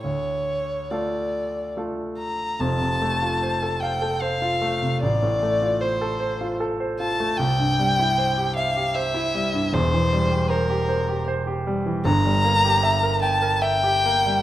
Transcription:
0.04 D2 C#5
0.91 A3 F4 A4 D5
1.77 A3 F4 A4
2.18 A#5
2.60 F1 F2 A5
2.81 C3
3.02 A3
3.22 F4
3.42 C5
3.63 A4
3.80 F5 G5
4.02 A4
4.21 C5 F5
4.42 F4
4.62 A3
4.82 C3
5.02 A1 D5
5.22 A2
5.43 A3
5.62 F4
5.81 C5
6.01 A4
6.20 C5
6.41 F4
6.60 A4
6.80 C5
7.00 F4 A5
7.20 A3
7.38 C2 G5
7.59 G2
7.79 G3
7.99 E4
8.18 C5
8.38 G4
8.56 E5 F5
8.76 G4
8.94 C5 E5
9.14 E4
9.35 G3
9.54 G2
9.73 E1 E2 C5
9.94 E3
10.12 G3
10.31 G4
10.50 A#4 C5
10.69 G4
10.89 C5
11.09 G4
11.28 C5
11.47 G4
11.67 G3
11.86 E3
12.05 G1 G2 A#5
12.25 G3
12.44 A#3
12.65 G4
12.83 E5
13.03 A#4
13.22 G5 A5
13.42 A#4
13.62 E5 G5
13.83 G4
14.06 A#3
14.26 G3

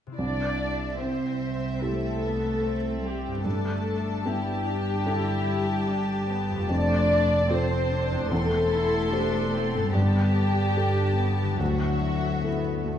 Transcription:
0.07 C3 C4
0.12 E4 G4
0.17 C2 D4 D5 E5
1.00 C4 C5
1.82 A3 C4 E4 G4 A4
2.22 B3
2.65 C4
3.04 G3 G4
3.27 G2
3.32 B3
3.36 D4
3.41 A4 A5
3.45 G1 G2 A3 D4 A4
4.26 G3 B3 E4 G4
4.66 D4
5.05 D4 E4 A4
5.86 D4
6.28 B3
6.50 F2
6.55 C4
6.59 F4
6.64 A4
6.68 F1 F2 A3 D4 D5
7.49 C4 F4 A4 C5
7.91 D4
8.11 E2
8.16 C4
8.21 G4
8.25 C5
8.30 E1 E2 A3 C4 A4 C6
8.72 E4
9.11 D4 G4 C5
9.53 C4
9.75 G2
9.79 B3
9.84 G4
9.88 A4
9.93 G1 G2 G3 B3 G4 A5
10.76 D4 G4 A4
11.17 B3
11.41 D3
11.46 D4
11.50 E4
11.55 A4
11.59 D2 F#3 A3 F#4 E5
12.43 B3 E4 A4
12.84 A3

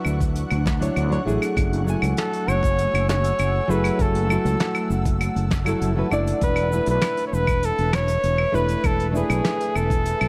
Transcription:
Already playing: F#3 D4 E4 B4 F#5 C#6 F#6
0.05 D2, claves, shaker
0.21 kick, closed hi-hat, shaker
0.36 closed hi-hat, shaker
0.51 D2, closed hi-hat, claves
0.66 kick, snare, shaker
0.79 F#3 D4 E4 C#5, closed hi-hat, shaker
0.96 D2, closed hi-hat, claves, shaker
1.09 F#3 D4 E4 C#5, closed hi-hat
1.24 A1 F#3 A3 E4 G#4, shaker
1.42 closed hi-hat, claves, shaker
1.56 F#1 A3 G#5 E6, kick, closed hi-hat, claves, shaker
1.73 closed hi-hat
1.84 F#3 A3 E4, shaker
1.90 G#5
2.02 C#2, closed hi-hat, claves, shaker
2.17 A4, snare, closed hi-hat, shaker
2.33 closed hi-hat
2.48 F#1 C#5, claves, shaker
2.63 kick, closed hi-hat, shaker
2.79 closed hi-hat, shaker
2.93 F#1, closed hi-hat, claves
3.09 C#5, snare, shaker
3.24 closed hi-hat, shaker
3.39 F#1, closed hi-hat, claves, shaker
3.68 F#1 F#3 A3 E4 G#4 B4, shaker
3.84 closed hi-hat, claves, shaker
3.99 F#1 A4 A5, kick, closed hi-hat, shaker
4.15 closed hi-hat
4.27 F#3 A3, claves
4.31 E4 F#4, shaker
4.45 C#2, closed hi-hat, shaker
4.60 snare, closed hi-hat, shaker
4.75 closed hi-hat, claves
4.90 F#1, shaker
5.05 kick, closed hi-hat, shaker
5.21 closed hi-hat, claves, shaker
5.36 F#1, closed hi-hat
5.51 kick, snare, shaker
5.65 F#3 A3 E4 A4, closed hi-hat, claves, shaker
5.81 F#1, closed hi-hat, shaker
5.96 F#3 A3 E4 B4
6.11 F#1 A3 D4 E4 D5, claves, shaker
6.27 closed hi-hat, shaker
6.41 E1 B4 E5, kick, closed hi-hat, shaker
6.56 closed hi-hat, claves
6.70 A3 D4, shaker
6.74 E4 B4
6.86 B1 B4, closed hi-hat, shaker
7.02 snare, closed hi-hat, claves, shaker
7.17 closed hi-hat
7.27 C#5
7.33 E1 B4, shaker
7.47 kick, closed hi-hat, claves, shaker
7.63 A4, closed hi-hat, shaker
7.78 E1, closed hi-hat
7.93 C#5, snare, claves, shaker
8.08 closed hi-hat, shaker
8.23 E1, closed hi-hat, shaker
8.38 claves
8.52 E1 A3 D4 E4 B4, shaker
8.68 closed hi-hat, shaker
8.84 E1 A4, kick, closed hi-hat, claves, shaker
9.00 closed hi-hat
9.09 A3 A4
9.13 D4 E4 G#4, shaker
9.17 B4
9.30 B1, closed hi-hat, claves, shaker
9.45 snare, closed hi-hat, shaker
9.60 closed hi-hat
9.75 E1 A4, claves, shaker
9.90 kick, closed hi-hat, shaker
10.05 closed hi-hat, shaker
10.21 B1, closed hi-hat, claves

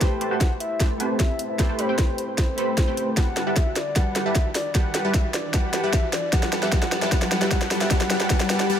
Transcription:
Already playing: riser
0.00 A3 E4 G4 B4 C5 G5 A5, kick, snare, closed hi-hat
0.21 A3 G4 B4 C5 A5, closed hi-hat
0.29 A3 E4 G4 B4 C5 F#5 A5
0.33 C5
0.41 kick, snare, closed hi-hat
0.60 E5, closed hi-hat
0.80 A3 G4 B4 C5 A5, kick, snare, closed hi-hat
0.98 A3 C4 E4 G4 B4 C5 A5 B5, closed hi-hat
1.20 E5, kick, snare, closed hi-hat
1.39 closed hi-hat
1.50 E5
1.58 A3 E4 G4 B4 C5 A5, kick, snare, closed hi-hat
1.69 A3 G4 B4 C5 A5
1.79 A3 G4 B4 C5 B5, closed hi-hat
1.87 A3 C4 E4 G4 B4 C5 G5 B5
1.98 kick, snare, closed hi-hat
2.09 C5
2.18 closed hi-hat
2.28 C5
2.38 kick, snare, closed hi-hat
2.56 A3 E4 G4 A4 B4 C5 B5, closed hi-hat
2.77 kick, snare, closed hi-hat
2.88 A3 G4 B4 C5 G5
2.97 closed hi-hat
3.17 G3 G4 B4 F#5 A5, kick, snare, closed hi-hat
3.37 G3 G4 A4 B4 F#5 A5, snare, closed hi-hat
3.47 G3 G4 B4 E5 F#5 A5
3.56 kick, snare, closed hi-hat
3.66 F#4
3.76 B4 D5, snare, closed hi-hat
3.96 G3 G4 B4 F#5 A5, kick, snare, closed hi-hat
4.16 G3 G4 A4 B4 F#5 A5, snare, closed hi-hat
4.26 G3 G4 B4 E5 F#5 A5
4.35 kick, snare, closed hi-hat
4.45 F#4
4.55 B4 D5, snare, open hi-hat
4.75 G3 G4 B4 F#5 A5, kick, snare, closed hi-hat
4.94 G3 G4 A4 B4 F#5 A5, snare, closed hi-hat
5.04 G3 G4 B4 E5 F#5 A5
5.14 kick, snare, closed hi-hat
5.24 F#4
5.34 B4 D5, snare, closed hi-hat
5.54 G3 G4 B4 F#5 A5, kick, snare, closed hi-hat
5.73 G3 G4 A4 B4 F#5 A5, snare, closed hi-hat
5.83 G3 G4 B4 E5 F#5 A5
5.93 kick, snare, closed hi-hat
6.03 F#4
6.13 B4 D5, snare, open hi-hat
6.33 G3 G4 B4 F#5 A5, kick, snare, closed hi-hat
6.43 snare
6.52 G3 G4 A4 B4 F#5 A5, snare, closed hi-hat
6.62 G3 G4 B4 E5 F#5 A5, snare
6.72 G3 B4 F#5, kick, snare, closed hi-hat
6.82 snare
6.92 G3 G4 A4 B4 F#5 A5, snare, closed hi-hat
7.02 G3 G4 B4 E5 F#5 A5, snare
7.12 G3 G4 B4 F#5 A5, kick, snare, closed hi-hat
7.22 snare
7.31 G3 G4 A4 B4 F#5 A5, snare, closed hi-hat
7.41 G3 G4 B4 E5 F#5 A5, snare
7.51 G3 G4 B4 F#5, kick, snare, closed hi-hat
7.61 snare
7.71 G3 G4 A4 B4 F#5 A5, snare, open hi-hat
7.81 G3 G4 B4 E5 F#5 A5, snare
7.91 G4 B4 F#5, kick, snare, closed hi-hat
8.01 snare
8.10 G3 G4 B4 F#5 A5, snare, closed hi-hat
8.20 snare
8.30 G3 G4 B4 F#5 A5, kick, snare, closed hi-hat
8.40 snare
8.50 G3 G4 B4 F#5 A5, snare, closed hi-hat
8.60 snare
8.70 G3 G4 B4 F#5 A5

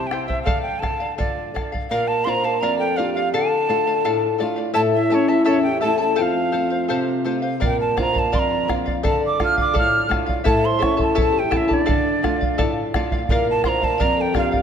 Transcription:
Already playing: C3 E4 G4 C5 G5
0.07 G5
0.11 E4 G4 C5 E5 G5, bombo rim
0.26 E4 C5 E5 G5, bombo low
0.43 D3 A4 D5 F5
0.47 F5, bombo low
0.62 G5
0.80 A4 D5 F5 A5, bombo rim, bombo low
1.00 D5 F5
1.18 F4 A4 D5 F5, bombo low
1.54 A4 D5 F5, bombo rim, bombo low
1.72 D5 F5, bombo low
1.91 A#2 A#4 D5 F5
2.08 A#4 A5
2.25 A#3 D4 F4 A#4 C5 D5 F5 C6
2.29 A#5
2.44 A#4 D5 F5 A5
2.60 F2 A#4 D5 F5 A#5
2.78 A4 G5
2.97 A#3 D4 F4 G4 A#4 D5 F5
3.14 G4 F5
3.18 D5
3.33 D3 A4 D5 F5 A5
3.69 A3 D4 F4 A4 D5 F5
3.87 D5 F5
4.05 A2 A4 D5 F5
4.38 A3 D4 F4 A4 D5 F5
4.56 D5 F5
4.74 A2 E4 A4 C#5 E5 A5
4.95 E4 E5
5.10 A3 C#4 E4 A4 C#5 E5 A5
5.28 E4 A4 E5 A5
5.45 E2 C#4 E4 A4 C#5 E5 A5
5.63 G4 G5
5.81 A3 E4 A4 E5 A5
5.85 C#4 E4
5.98 E4 A4 A5
6.16 F2 F4 A4 C5 F5 G5
6.22 F5
6.52 A3 C4 F4 A4 C5 F5
6.70 C5 F5
6.88 C3 A4 C5 F5
7.24 A3 C4 F4 A4 C5 F5
7.42 C5 F5
7.60 A#2 A#4 D5 F5, bombo low
7.65 G5
7.79 A#4 A5
7.96 A#3 D4 F4 A#4 C5 D5 F5, bombo rim, bombo low
8.01 A#5
8.12 A#4 D5 F5, bombo low
8.19 A5
8.32 F2 A#4 D5 F5 C6, bombo low
8.39 A#5
8.68 A#3 D4 F4 A#4 D5 F5, bombo rim, bombo low
8.86 D5 F5, bombo low
9.03 D3 A4 D5 F5, bombo low
9.08 A5
9.21 D5
9.26 D6
9.39 A3 D4 F4 A4 D5 F5, bombo rim, bombo low
9.44 F6
9.57 D5 F5 D6, bombo low
9.73 A2 A4 D5 F5, bombo low
9.79 F6
10.09 A3 D4 F4 A4 D5 F5, bombo rim, bombo low
10.26 D5 F5, bombo low
10.44 A2 E4 A4 C#5 E5 A5, bombo low
10.63 C5 C6
10.79 A3 C#4 E4 A4 C#5 E5 A5, bombo rim, bombo low
10.83 C#6
10.97 E4 A4 A5, bombo low
11.02 A5
11.15 E2 E4 A4 C#5 E5 A5, bombo low
11.22 A5
11.32 G4
11.39 G5
11.49 A3 C#4 E4 A4 E5 A5, bombo rim, bombo low
11.57 E5
11.68 D4 E4 A4 A5, bombo low
11.73 D5
11.86 D3 A4 D5 F5, bombo low
12.23 A3 D4 F4 A4 D5 F5, bombo rim, bombo low
12.41 D5 F5, bombo low
12.58 A2 A4 D5 F5, bombo low
12.94 A3 D4 F4 A4 D5 F5, bombo rim, bombo low
13.12 D5 F5, bombo low
13.29 A#2 A#4 D5 F5, bombo low
13.47 A#4 A5
13.64 A#3 D4 F4 A#4 C5 D5 F5 C6, bombo rim, bombo low
13.68 A#5
13.82 A#4 D5 F5 A5, bombo low
13.98 F2 A#4 D5 F5 A#5, bombo low
14.17 A4
14.21 G5
14.33 A#3 D4 F4 G4 A#4 D5 F5, bombo rim, bombo low
14.38 F5
14.51 G4 D5 F5, bombo low
14.56 F5

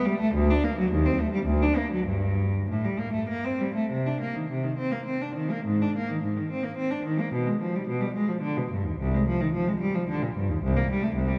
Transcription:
0.05 G3
0.20 A3
0.34 D2
0.50 D4
0.64 A#3
0.79 F#3
0.91 D#2
1.06 C4
1.20 A3
1.33 G3
1.46 D2
1.62 D4
1.77 A#3
1.93 F#3
2.06 G2
2.70 A2
2.84 G3
2.99 A#3
3.13 A3
3.29 A#3
3.44 C4
3.61 G3
3.75 A3
3.91 C3
4.06 D4
4.21 A#3
4.35 D#3
4.50 C3
4.63 D#3
4.78 C4
4.92 A#3
5.06 C4
5.21 D4
5.35 D#3
5.50 A#3
5.65 G#2
5.82 D4
5.96 A#3
6.10 D#3
6.23 G#2
6.37 D#3
6.50 C4
6.64 A#3
6.77 C4
6.91 D4
7.05 D#3
7.20 A#3
7.33 B2
7.47 G#3
7.60 F3
7.76 G3
7.88 B2
8.01 G3
8.14 G#3
8.28 F3
8.41 D3
8.57 B2
8.71 G2
8.84 D#2
8.99 C2
9.14 G#3
9.28 F3
9.41 D#3
9.53 F3
9.68 G#3
9.80 G3
9.95 F3
10.08 D3
10.22 A#2
10.36 G2
10.49 D#2
10.63 C2
10.77 A#3
10.91 G3
11.02 A3
11.15 C2
11.28 G3

